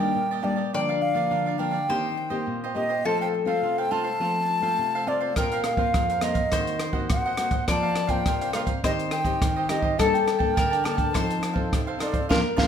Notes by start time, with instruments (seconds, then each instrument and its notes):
Already playing: nylon-string guitar D#3, mandolin A#4, flute G5
0.00 nylon-string guitar G3 A#3 D4, cavaquinho G4 D5 D#5
0.15 nylon-string guitar A#2
0.31 cavaquinho G4 D5 D#5
0.42 nylon-string guitar G3 A#3 D4, cavaquinho D4 G4 D5 D#5, flute D5
0.56 cavaquinho G4 D5 D#5
0.73 nylon-string guitar D3 F3 A#3 D4, cavaquinho D4 A#4 D5 F5, mandolin D5, flute G5
0.89 cavaquinho A#4 D5 F5
1.01 flute F5, muted cavaquinho stroke
1.14 nylon-string guitar F3 A#3 D4, cavaquinho A#4 D5 F5
1.31 nylon-string guitar D3, cavaquinho D4 A#4 D5 F5
1.46 cavaquinho A#4 D5 F5
1.58 nylon-string guitar F3 A#3 D4, cavaquinho D4 A#4 D5 F5, flute G5
1.71 cavaquinho A#4 D5 F5
1.88 nylon-string guitar D#3 A#3 C4 G4, cavaquinho D#4 G4 C5 D#5, mandolin C5
2.17 muted cavaquinho stroke
2.30 nylon-string guitar A#3 C4 G4, cavaquinho G4 C5 D#5
2.47 nylon-string guitar A#2
2.64 cavaquinho G4 C5 D#5
2.75 nylon-string guitar A#3 C4 G4, cavaquinho D#4 G4 C5 D#5, flute D#5
2.89 cavaquinho G4 C5 D#5
3.05 nylon-string guitar F3 A3 C4 F4, cavaquinho F4 A4 C5 F5, mandolin A4, flute A5
3.21 cavaquinho A4 C5 F5, flute G5
3.34 muted cavaquinho stroke
3.45 nylon-string guitar A3 C4 F4, cavaquinho A4 C5 F5, flute F5
3.62 nylon-string guitar C3, cavaquinho F4 A4 C5 F5
3.78 cavaquinho A4 C5 F5, flute G5
3.91 nylon-string guitar A3 C4 F4, cavaquinho F4 A4 C5 F5, flute A5
4.04 cavaquinho A4 C5 F5
4.20 nylon-string guitar F3 A3 C4 F4, cavaquinho F4 A4 C5 F5
4.50 muted cavaquinho stroke
4.61 nylon-string guitar A3 C4 F4, cavaquinho A4 C5 F5
4.78 nylon-string guitar C3
4.95 cavaquinho A4 C5 F5
5.06 nylon-string guitar A3 C4 F4, cavaquinho F4 A4 C5 F5, flute D5
5.20 cavaquinho A4 C5 F5
5.36 nylon-string guitar A#2 A#3 C4 F4, cavaquinho F4 A#4 C5 F5, mandolin A#4, flute G5, kick, cross-stick, closed hi-hat
5.52 cavaquinho A#4 C5 F5, closed hi-hat
5.64 flute F5, muted cavaquinho stroke, cross-stick, closed hi-hat
5.77 nylon-string guitar A#3 C4 F4, cavaquinho A#4 C5 F5, kick
5.94 nylon-string guitar F2, cavaquinho F4 A#4 C5 F5, kick, cross-stick, closed hi-hat
6.10 cavaquinho A#4 C5 F5, closed hi-hat
6.21 nylon-string guitar A#3 C4 F4, cavaquinho F4 A#4 C5 F5, flute D#5, cross-stick, closed hi-hat
6.34 cavaquinho A#4 C5 F5, kick, closed hi-hat
6.52 nylon-string guitar D#3 A#3 C4 F#4, cavaquinho F#4 C5 D#5 F#5, mandolin C5, kick, cross-stick, closed hi-hat
6.67 closed hi-hat
6.79 muted cavaquinho stroke, cross-stick, closed hi-hat
6.93 nylon-string guitar A#3 C4 F#4, cavaquinho C5 D#5 F#5, kick
7.10 nylon-string guitar A#2, flute F#5, kick, cross-stick, closed hi-hat
7.26 cavaquinho C5 D#5 F#5
7.37 nylon-string guitar A#3 C4 F#4, cavaquinho F#4 C5 D#5 F#5, cross-stick, closed hi-hat
7.51 cavaquinho C5 D#5 F#5, kick, closed hi-hat
7.68 nylon-string guitar F3 A#3 C4 F4, cavaquinho F4 A#4 C5 F5, mandolin D5, flute A5, kick, cross-stick, closed hi-hat
7.82 cavaquinho A#4 C5 F5
7.95 muted cavaquinho stroke, cross-stick, closed hi-hat
8.07 nylon-string guitar A#3 C4 F4, cavaquinho A#4 C5 F5, flute G5, kick, closed hi-hat
8.26 nylon-string guitar C3, cavaquinho F4 A#4 C5 F5, kick, cross-stick, closed hi-hat
8.41 cavaquinho A#4 C5 F5, closed hi-hat
8.53 nylon-string guitar A#3 C4 F4, cavaquinho F4 A#4 C5 F5, flute F5, cross-stick, closed hi-hat
8.66 cavaquinho A#4 C5 F5, kick, closed hi-hat
8.84 nylon-string guitar D#3 C4 D#4 G4, cavaquinho D#4 G4 C5 D#5, mandolin C5, flute D#5, kick, cross-stick, closed hi-hat
8.99 closed hi-hat
9.11 flute G5, muted cavaquinho stroke, cross-stick, closed hi-hat
9.24 nylon-string guitar C4 D#4 G4, cavaquinho G4 C5 D#5, kick, closed hi-hat
9.42 nylon-string guitar D#3, kick, cross-stick, closed hi-hat
9.56 cavaquinho G4 C5 D#5
9.69 nylon-string guitar C4 D#4 G4, cavaquinho D#4 G4 C5 D#5, flute D#5, cross-stick, closed hi-hat
9.82 cavaquinho G4 C5 D#5, kick
9.98 nylon-string guitar G3 A#3 D4 A4, mandolin A4, cavaquinho A#4 D5 G5 A5, flute A5, kick, cross-stick, closed hi-hat
10.13 cavaquinho D5 G5 A5, closed hi-hat
10.25 flute G5, muted cavaquinho stroke, cross-stick, closed hi-hat
10.38 nylon-string guitar A#3 D4 A4, cavaquinho D5 G5 A5, kick
10.55 nylon-string guitar D3, cavaquinho A#4 D5 G5 A5, mandolin A#4, kick, cross-stick, closed hi-hat
10.70 cavaquinho D5 G5 A5, closed hi-hat
10.83 nylon-string guitar A#3 D4 A4, cavaquinho A#4 D5 G5 A5, flute A5, cross-stick, closed hi-hat
10.95 cavaquinho D5 G5 A5, kick, closed hi-hat
11.13 nylon-string guitar F3 C4 D#4 A4, cavaquinho D#4 A4 C5 F5, mandolin C5, kick, cross-stick, closed hi-hat
11.30 closed hi-hat
11.41 muted cavaquinho stroke, cross-stick, closed hi-hat
11.53 nylon-string guitar C4 D#4 A4, cavaquinho A4 C5 F5, kick
11.72 nylon-string guitar C3, kick, cross-stick, closed hi-hat
11.87 cavaquinho A4 C5 F5
11.99 nylon-string guitar C4 D#4 A4, cavaquinho D#4 A4 C5 F5, flute D5, cross-stick, closed hi-hat
12.12 cavaquinho A4 C5 F5, kick, closed hi-hat
12.29 nylon-string guitar F3 A#3 D4, cavaquinho F4 A#4 D5, mandolin A#4, flute F5, kick, snare
12.56 nylon-string guitar F3 A#3 D4, cavaquinho F4 A#4 D5, flute F5, kick, snare